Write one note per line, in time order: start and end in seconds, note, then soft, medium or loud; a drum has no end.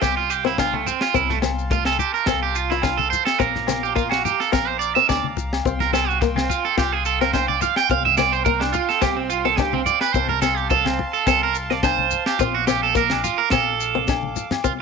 0.00 0.88 C2 medium
0.00 0.23 C4 medium
0.00 0.17 G4 medium
0.00 10.10 F5 medium
0.00 1.11 G5 medium
0.00 3.35 C6 medium
0.00 kick medium
0.00 snare medium
0.00 high conga medium
0.00 low agogo medium
0.00 maracas medium
0.17 0.30 F4 medium
0.30 0.45 G4 loud
0.30 maracas medium
0.45 0.55 C4 medium
0.45 0.59 E4 medium
0.45 snare soft
0.58 0.79 D4 medium
0.58 0.74 F4 medium
0.58 kick medium
0.58 snare medium
0.58 high conga medium
0.58 low agogo medium
0.58 maracas medium
0.73 0.86 A3 medium
0.73 high conga medium
0.86 1.01 C4 medium
0.86 low conga medium
0.86 maracas medium
1.01 1.15 F4 medium
1.01 snare medium
1.01 low agogo medium
1.14 2.00 C2 medium
1.14 1.35 C4 medium
1.14 1.29 E4 medium
1.14 3.38 A5 medium
1.14 kick medium
1.14 maracas medium
1.29 1.38 A3 medium
1.29 snare soft
1.29 low conga medium
1.42 1.64 C4 medium
1.42 snare medium
1.42 high conga medium
1.42 low agogo medium
1.42 maracas medium
1.59 maracas soft
1.70 1.92 A3 medium
1.70 1.86 F4 medium
1.70 kick medium
1.70 snare soft
1.70 maracas medium
1.85 1.99 A4 medium
1.85 snare medium
1.85 low agogo medium
1.99 2.13 G4 medium
1.99 low conga medium
1.99 maracas medium
2.14 2.28 A#4 medium
2.14 maracas soft
2.26 3.12 C2 medium
2.26 2.48 C4 medium
2.26 2.42 A4 medium
2.26 kick medium
2.26 snare medium
2.26 high conga medium
2.26 low agogo medium
2.26 maracas medium
2.43 2.55 G4 medium
2.55 2.70 F4 medium
2.55 maracas medium
2.70 2.83 E4 medium
2.70 2.81 F4 medium
2.70 snare soft
2.82 3.04 D4 medium
2.82 2.98 F4 medium
2.82 kick medium
2.82 snare medium
2.82 high conga medium
2.82 low agogo medium
2.82 maracas medium
2.97 3.10 A4 medium
2.97 high conga medium
3.10 3.25 C5 loud
3.10 low conga medium
3.10 maracas loud
3.25 3.39 A4 loud
3.25 snare medium
3.25 low agogo medium
3.39 4.25 A#1 loud
3.39 3.60 C4 loud
3.39 3.82 A#4 medium
3.39 5.63 A#5 medium
3.39 5.63 D6 medium
3.39 kick medium
3.39 maracas medium
3.55 snare soft
3.55 low conga medium
3.67 3.89 C4 medium
3.67 snare medium
3.67 high conga medium
3.67 low agogo medium
3.67 maracas loud
3.83 3.95 G4 medium
3.83 maracas soft
3.96 4.16 A#3 medium
3.96 4.10 F4 medium
3.96 kick medium
3.96 maracas medium
4.09 4.23 F#4 medium
4.09 snare medium
4.09 low agogo medium
4.25 4.39 G4 medium
4.25 low conga medium
4.25 maracas loud
4.40 4.52 A4 medium
4.40 snare soft
4.40 maracas soft
4.52 4.95 A#1 medium
4.52 4.73 C4 medium
4.52 4.68 A#4 medium
4.52 kick loud
4.52 snare medium
4.52 high conga medium
4.52 low agogo medium
4.52 maracas medium
4.68 4.79 C5 medium
4.79 4.94 D5 loud
4.79 maracas loud
4.95 5.06 C4 medium
4.95 5.08 E5 loud
4.95 maracas soft
5.09 5.34 D2 medium
5.09 5.29 D4 medium
5.09 5.26 D5 medium
5.09 kick medium
5.09 snare medium
5.09 high conga medium
5.09 low agogo medium
5.09 maracas medium
5.24 high conga medium
5.37 5.62 C2 medium
5.37 low conga medium
5.37 maracas medium
5.53 snare medium
5.53 low agogo medium
5.65 6.50 C2 loud
5.65 5.86 C4 medium
5.65 10.11 G5 medium
5.65 10.11 C6 medium
5.65 kick medium
5.65 maracas medium
5.80 5.93 A#4 medium
5.80 snare soft
5.80 low conga medium
5.93 6.14 C4 medium
5.93 6.08 A4 medium
5.93 snare medium
5.93 high conga medium
5.93 low agogo medium
5.93 maracas loud
6.08 6.21 F#4 medium
6.08 maracas soft
6.21 6.42 A#3 medium
6.21 muted clean electric guitar stroke medium
6.21 kick medium
6.21 snare soft
6.21 maracas medium
6.36 6.49 C4 medium
6.36 snare medium
6.36 high conga medium
6.36 low agogo medium
6.50 6.64 F4 medium
6.50 low conga medium
6.50 maracas loud
6.65 6.77 A4 medium
6.65 maracas soft
6.77 7.63 C2 medium
6.77 6.98 F4 medium
6.77 6.92 G4 medium
6.77 kick medium
6.77 snare medium
6.77 high conga medium
6.77 low agogo medium
6.77 maracas medium
6.92 7.05 G#4 medium
7.05 7.20 A4 medium
7.05 maracas medium
7.21 7.31 C4 medium
7.21 7.33 A#4 medium
7.21 snare soft
7.33 7.55 D4 medium
7.33 7.48 C5 medium
7.33 kick medium
7.33 snare medium
7.33 high conga medium
7.33 low agogo medium
7.33 maracas medium
7.48 7.61 D5 medium
7.48 high conga medium
7.61 7.77 F5 medium
7.61 low conga medium
7.61 maracas medium
7.76 7.90 G5 loud
7.76 snare medium
7.76 low agogo medium
7.89 8.75 C2 loud
7.89 8.11 C4 loud
7.89 8.05 F5 medium
7.89 kick medium
7.89 maracas medium
8.05 8.17 E5 medium
8.05 low conga medium
8.17 8.39 C4 medium
8.17 8.32 D5 medium
8.17 snare medium
8.17 high conga medium
8.17 low agogo medium
8.17 maracas medium
8.33 8.44 C5 medium
8.33 maracas soft
8.45 8.67 A#3 medium
8.45 8.60 A#4 medium
8.45 kick medium
8.45 maracas medium
8.60 8.73 D4 medium
8.60 snare medium
8.60 low agogo medium
8.73 8.88 F4 medium
8.73 low conga medium
8.73 maracas medium
8.89 9.02 A4 medium
8.89 snare soft
8.89 maracas soft
9.01 9.87 C2 medium
9.01 9.23 C4 medium
9.01 9.16 G4 medium
9.01 kick medium
9.01 snare medium
9.01 high conga medium
9.01 low agogo medium
9.01 maracas medium
9.16 9.30 C4 medium
9.30 9.45 F4 medium
9.30 maracas medium
9.45 9.55 C4 medium
9.45 9.58 A4 medium
9.57 9.80 D4 medium
9.57 9.73 G4 medium
9.57 kick medium
9.57 snare medium
9.57 high conga medium
9.57 low agogo medium
9.57 maracas medium
9.73 9.81 C4 medium
9.73 high conga medium
9.86 10.01 D5 medium
9.86 low conga medium
9.86 maracas loud
10.01 10.13 B4 loud
10.01 snare medium
10.01 low agogo medium
10.13 11.00 C2 loud
10.13 10.36 C4 medium
10.13 10.29 C5 medium
10.13 14.60 F5 medium
10.13 12.37 A5 medium
10.13 12.37 C6 medium
10.13 kick medium
10.13 maracas medium
10.29 10.41 A#4 medium
10.29 low conga medium
10.42 10.64 C4 medium
10.42 10.57 A4 medium
10.42 snare medium
10.42 high conga medium
10.42 low agogo medium
10.42 maracas loud
10.57 10.70 G4 medium
10.57 maracas soft
10.70 10.92 F3 medium
10.70 10.85 A4 loud
10.70 kick medium
10.70 maracas medium
10.85 10.99 C4 soft
10.85 snare medium
10.85 high conga medium
10.85 low agogo medium
10.99 low conga medium
11.13 11.26 A4 medium
11.13 maracas soft
11.26 12.12 C2 medium
11.26 11.48 C4 medium
11.26 11.42 A4 medium
11.26 kick medium
11.26 snare medium
11.26 high conga medium
11.26 low agogo medium
11.26 maracas medium
11.43 11.55 A#4 medium
11.55 maracas loud
11.70 11.80 C4 medium
11.70 11.83 D5 loud
11.70 snare soft
11.83 12.04 D4 medium
11.83 12.24 C5 medium
11.83 kick medium
11.83 snare medium
11.83 high conga medium
11.83 low agogo medium
11.83 maracas medium
11.98 high conga medium
12.11 low conga medium
12.11 maracas loud
12.26 12.39 G4 medium
12.26 snare medium
12.26 low agogo medium
12.39 13.25 A#1 loud
12.39 12.61 C4 medium
12.39 12.54 F4 medium
12.39 14.63 D6 medium
12.39 kick medium
12.39 maracas medium
12.55 12.67 F#4 medium
12.67 12.89 C4 medium
12.67 12.82 G4 medium
12.67 snare medium
12.67 high conga medium
12.67 low agogo medium
12.67 maracas loud
12.83 12.96 A4 medium
12.95 13.16 A#3 medium
12.95 13.11 A#4 loud
12.95 kick loud
12.95 snare soft
12.95 maracas medium
13.10 13.23 D4 soft
13.10 snare medium
13.10 high conga medium
13.10 low agogo medium
13.24 13.39 F4 medium
13.24 low conga medium
13.24 maracas loud
13.38 13.51 A#4 medium
13.50 14.37 A#1 medium
13.50 13.73 C4 medium
13.50 14.47 A4 medium
13.50 kick medium
13.50 snare medium
13.50 high conga medium
13.50 low agogo medium
13.50 maracas medium
13.80 maracas loud
13.95 14.05 C4 medium
13.95 high conga medium
14.08 14.29 D4 medium
14.08 kick medium
14.08 snare medium
14.08 high conga medium
14.08 low agogo medium
14.08 maracas medium
14.23 high conga medium
14.36 low conga medium
14.36 maracas loud
14.51 snare medium
14.51 low conga medium
14.51 low agogo medium
14.51 maracas soft
14.64 14.82 C2 medium
14.64 14.82 C4 medium
14.64 14.72 F4 medium
14.64 kick medium
14.64 maracas medium